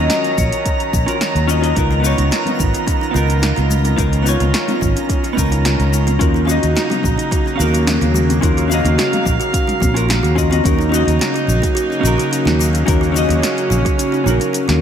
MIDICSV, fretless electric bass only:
0, 0, Header, 1, 2, 480
1, 0, Start_track
1, 0, Key_signature, -6, "minor"
1, 0, Tempo, 555556
1, 1520, Time_signature, 4, 2, 24, 8
1, 9200, Key_signature, -6, "minor"
1, 12799, End_track
2, 0, Start_track
2, 0, Title_t, "Fretless electric bass"
2, 0, Program_c, 0, 35
2, 327, Note_on_c, 0, 34, 89
2, 425, Note_off_c, 0, 34, 0
2, 806, Note_on_c, 0, 34, 88
2, 904, Note_off_c, 0, 34, 0
2, 1167, Note_on_c, 0, 39, 77
2, 1485, Note_off_c, 0, 39, 0
2, 1526, Note_on_c, 0, 37, 89
2, 1850, Note_off_c, 0, 37, 0
2, 1887, Note_on_c, 0, 37, 89
2, 1979, Note_off_c, 0, 37, 0
2, 2244, Note_on_c, 0, 32, 84
2, 2343, Note_off_c, 0, 32, 0
2, 2718, Note_on_c, 0, 37, 90
2, 3046, Note_off_c, 0, 37, 0
2, 3089, Note_on_c, 0, 37, 87
2, 3406, Note_off_c, 0, 37, 0
2, 3442, Note_on_c, 0, 37, 93
2, 3768, Note_off_c, 0, 37, 0
2, 3805, Note_on_c, 0, 37, 94
2, 3898, Note_off_c, 0, 37, 0
2, 4160, Note_on_c, 0, 32, 82
2, 4262, Note_off_c, 0, 32, 0
2, 4642, Note_on_c, 0, 37, 88
2, 4968, Note_off_c, 0, 37, 0
2, 5005, Note_on_c, 0, 37, 93
2, 5324, Note_off_c, 0, 37, 0
2, 5360, Note_on_c, 0, 39, 95
2, 5687, Note_off_c, 0, 39, 0
2, 5732, Note_on_c, 0, 39, 98
2, 5821, Note_off_c, 0, 39, 0
2, 6084, Note_on_c, 0, 34, 83
2, 6183, Note_off_c, 0, 34, 0
2, 6562, Note_on_c, 0, 39, 98
2, 6888, Note_off_c, 0, 39, 0
2, 6924, Note_on_c, 0, 39, 94
2, 7244, Note_off_c, 0, 39, 0
2, 7282, Note_on_c, 0, 39, 96
2, 7608, Note_off_c, 0, 39, 0
2, 7643, Note_on_c, 0, 39, 94
2, 7736, Note_off_c, 0, 39, 0
2, 8001, Note_on_c, 0, 34, 83
2, 8102, Note_off_c, 0, 34, 0
2, 8481, Note_on_c, 0, 34, 102
2, 8807, Note_off_c, 0, 34, 0
2, 8837, Note_on_c, 0, 39, 84
2, 9160, Note_off_c, 0, 39, 0
2, 9203, Note_on_c, 0, 39, 98
2, 9528, Note_off_c, 0, 39, 0
2, 9566, Note_on_c, 0, 39, 101
2, 9658, Note_off_c, 0, 39, 0
2, 9919, Note_on_c, 0, 34, 87
2, 10021, Note_off_c, 0, 34, 0
2, 10398, Note_on_c, 0, 34, 91
2, 10500, Note_off_c, 0, 34, 0
2, 10762, Note_on_c, 0, 39, 76
2, 11083, Note_off_c, 0, 39, 0
2, 11127, Note_on_c, 0, 39, 100
2, 11450, Note_off_c, 0, 39, 0
2, 11484, Note_on_c, 0, 39, 99
2, 11577, Note_off_c, 0, 39, 0
2, 11840, Note_on_c, 0, 34, 92
2, 11942, Note_off_c, 0, 34, 0
2, 12319, Note_on_c, 0, 34, 95
2, 12421, Note_off_c, 0, 34, 0
2, 12687, Note_on_c, 0, 39, 81
2, 12799, Note_off_c, 0, 39, 0
2, 12799, End_track
0, 0, End_of_file